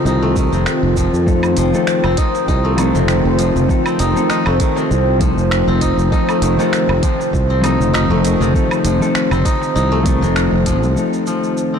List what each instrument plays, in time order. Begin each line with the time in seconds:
Already playing: guzheng C3 F3 A3 C4, ambient pad D#3 C4 F4 A5
0.05 fretless electric bass C2, guzheng D#4, shaker
0.22 guzheng A3
0.36 guzheng D#3, kick, darbuka ka, shaker
0.53 fretless electric bass F1, guzheng C3, shaker
0.66 finger snap, shaker
0.83 fretless electric bass F1, darbuka ka
0.97 guzheng F3, kick, darbuka ka, shaker
1.13 fretless electric bass F2, darbuka ka, shaker
1.26 clean electric guitar F3 A3 C4 D#4 A4, ambient pad C5, kick, shaker
1.43 darbuka tek, low woodblock, shaker
1.57 fretless electric bass F1, guzheng F3, closed hi-hat, darbuka ka, shaker
1.73 clean electric guitar F3 A3 C4 D#4 A4, darbuka tek, shaker
1.87 finger snap, shaker
2.04 fretless electric bass F1, guzheng C4, darbuka tek, low woodblock
2.17 guzheng D#4, kick, closed hi-hat, shaker
2.35 darbuka tek, shaker
2.48 fretless electric bass C2, guzheng D#4, kick, shaker
2.65 guzheng A3
2.77 guzheng D#3, clean electric guitar F3 A3 C4 D#4 A4, closed hi-hat, darbuka ka, darbuka tek, low woodblock, shaker
2.94 fretless electric bass F1, guzheng C3, darbuka dum, shaker
3.08 finger snap, shaker
3.25 fretless electric bass F1
3.38 guzheng F3, closed hi-hat, shaker
3.56 fretless electric bass F1, darbuka dum, shaker
3.69 clean electric guitar F3 A3 C4 D#4 A4, kick, shaker
3.86 guzheng C4, darbuka tek, low woodblock, shaker
3.99 fretless electric bass F1, guzheng D#4, closed hi-hat, darbuka ka, shaker
4.15 clean electric guitar F3 A3 C4 D#4 A4, darbuka tek, shaker
4.30 guzheng D#4, finger snap, shaker
4.46 fretless electric bass F1, guzheng A3, darbuka tek, low woodblock
4.60 guzheng D#3, kick, closed hi-hat, shaker
4.76 guzheng C3, darbuka tek, shaker
4.91 fretless electric bass C2, shaker
5.19 clean electric guitar F3 A3 C4 D#4 A4, guzheng F3, kick, closed hi-hat, darbuka ka, shaker
5.37 fretless electric bass F1, shaker
5.51 finger snap, shaker
5.68 fretless electric bass F1, guzheng C4, darbuka ka
5.81 guzheng D#4, kick, closed hi-hat, darbuka ka, shaker
5.98 fretless electric bass F1, darbuka ka, shaker
6.11 clean electric guitar F3 A3 C4 D#4 A4, guzheng D#4, kick, shaker
6.29 guzheng A3, darbuka tek, low woodblock, shaker
6.42 fretless electric bass F1, guzheng D#3, closed hi-hat, darbuka ka, shaker
6.58 guzheng C3, clean electric guitar F3 A3 C4 D#4 A4, darbuka tek, shaker
6.73 finger snap, shaker
6.89 fretless electric bass F1, darbuka tek, low woodblock
7.03 guzheng F3, kick, closed hi-hat, shaker
7.20 darbuka tek, shaker
7.33 fretless electric bass C2, kick, shaker
7.50 guzheng C4
7.62 clean electric guitar F3 A3 C4 D#4, guzheng D#4, closed hi-hat, darbuka ka, darbuka tek, low woodblock, shaker
7.66 clean electric guitar A4
7.80 fretless electric bass F1, darbuka dum, shaker
7.93 guzheng D#4, finger snap, shaker
8.10 fretless electric bass F1, guzheng A3
8.24 guzheng D#3, closed hi-hat, shaker
8.40 fretless electric bass F1, guzheng C3, darbuka dum, shaker
8.53 clean electric guitar F3 A3 C4 D#4 A4, kick, shaker
8.71 darbuka tek, low woodblock, shaker
8.84 fretless electric bass F1, guzheng F3, closed hi-hat, darbuka ka, shaker
9.00 clean electric guitar F3 A3 C4 D#4 A4, darbuka tek, shaker
9.15 finger snap, shaker
9.31 fretless electric bass F1, guzheng C4, darbuka tek, darbuka dum, low woodblock, shaker
9.45 guzheng D#4, kick, closed hi-hat, shaker
9.62 darbuka tek, shaker
9.76 fretless electric bass C2, guzheng D#4, shaker
9.92 guzheng A3
10.04 guzheng D#3, clean electric guitar F3 A3 C4 D#4 A4, kick, closed hi-hat, darbuka ka, shaker
10.22 fretless electric bass F1, guzheng C3, shaker
10.36 finger snap, shaker
10.52 fretless electric bass F1, darbuka ka
10.66 guzheng F3, kick, closed hi-hat, darbuka ka, shaker
10.83 fretless electric bass C2, darbuka ka, shaker
10.95 ambient pad D#3 C4 F4 A4, clean electric guitar F3 A3 C4 D#4, shaker
10.99 clean electric guitar A4
11.13 shaker
11.27 guzheng F3, shaker
11.44 shaker
11.57 shaker
11.74 guzheng C4